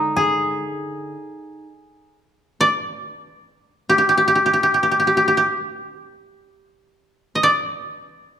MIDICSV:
0, 0, Header, 1, 3, 480
1, 0, Start_track
1, 0, Tempo, 500000
1, 8062, End_track
2, 0, Start_track
2, 0, Title_t, "Koto"
2, 0, Program_c, 0, 107
2, 2501, Note_on_c, 0, 74, 86
2, 3739, Note_on_c, 0, 67, 66
2, 3819, Note_off_c, 0, 67, 0
2, 3823, Note_on_c, 0, 67, 48
2, 3922, Note_off_c, 0, 67, 0
2, 3926, Note_on_c, 0, 67, 54
2, 4004, Note_off_c, 0, 67, 0
2, 4008, Note_on_c, 0, 67, 51
2, 4038, Note_off_c, 0, 74, 0
2, 4102, Note_off_c, 0, 67, 0
2, 4106, Note_on_c, 0, 67, 53
2, 4176, Note_off_c, 0, 67, 0
2, 4180, Note_on_c, 0, 67, 42
2, 4276, Note_off_c, 0, 67, 0
2, 4280, Note_on_c, 0, 67, 47
2, 4349, Note_off_c, 0, 67, 0
2, 4353, Note_on_c, 0, 67, 42
2, 4443, Note_off_c, 0, 67, 0
2, 4447, Note_on_c, 0, 67, 51
2, 4548, Note_off_c, 0, 67, 0
2, 4552, Note_on_c, 0, 67, 44
2, 4632, Note_off_c, 0, 67, 0
2, 4636, Note_on_c, 0, 67, 44
2, 4714, Note_off_c, 0, 67, 0
2, 4718, Note_on_c, 0, 67, 43
2, 4793, Note_off_c, 0, 67, 0
2, 4797, Note_on_c, 0, 67, 44
2, 4865, Note_off_c, 0, 67, 0
2, 4869, Note_on_c, 0, 67, 44
2, 4960, Note_off_c, 0, 67, 0
2, 4963, Note_on_c, 0, 67, 53
2, 5063, Note_off_c, 0, 67, 0
2, 5067, Note_on_c, 0, 67, 49
2, 5154, Note_off_c, 0, 67, 0
2, 5157, Note_on_c, 0, 67, 51
2, 7059, Note_on_c, 0, 75, 58
2, 7116, Note_off_c, 0, 67, 0
2, 7136, Note_on_c, 0, 74, 75
2, 7193, Note_off_c, 0, 75, 0
2, 8062, Note_off_c, 0, 74, 0
2, 8062, End_track
3, 0, Start_track
3, 0, Title_t, "Koto"
3, 0, Program_c, 1, 107
3, 0, Note_on_c, 1, 50, 47
3, 0, Note_on_c, 1, 56, 39
3, 0, Note_on_c, 1, 62, 35
3, 0, Note_on_c, 1, 63, 39
3, 158, Note_on_c, 1, 68, 39
3, 608, Note_off_c, 1, 56, 0
3, 1087, Note_off_c, 1, 50, 0
3, 1111, Note_off_c, 1, 62, 0
3, 1597, Note_off_c, 1, 63, 0
3, 2070, Note_off_c, 1, 68, 0
3, 8062, End_track
0, 0, End_of_file